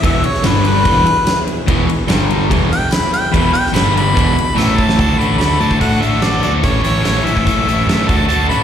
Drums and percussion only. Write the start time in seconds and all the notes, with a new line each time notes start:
0.04 kick, ride
0.24 ride
0.34 snare
0.43 snare, ride, tambourine
0.65 ride
0.85 kick, ride
1.06 ride
1.26 snare, ride, tambourine
1.47 ride
1.68 kick, ride
1.89 ride
2.08 snare, ride, tambourine
2.30 ride
2.51 kick, ride
2.73 ride
2.91 snare, ride, tambourine
3.14 ride
3.34 kick, ride
3.55 ride
3.66 snare
3.73 snare, ride, tambourine
3.97 ride
4.17 kick, ride
4.38 ride
4.58 snare, tambourine
4.78 kick
4.89 snare
4.99 kick, closed hi-hat
5.21 closed hi-hat
5.41 snare, closed hi-hat
5.61 closed hi-hat
5.71 kick
5.81 kick, closed hi-hat
6.03 closed hi-hat
6.22 snare, closed hi-hat
6.43 closed hi-hat
6.63 kick, closed hi-hat
6.84 closed hi-hat
7.05 snare, closed hi-hat
7.27 closed hi-hat
7.37 kick
7.47 kick, closed hi-hat
7.69 closed hi-hat
7.89 snare, closed hi-hat
8.09 kick, closed hi-hat
8.30 closed hi-hat
8.51 closed hi-hat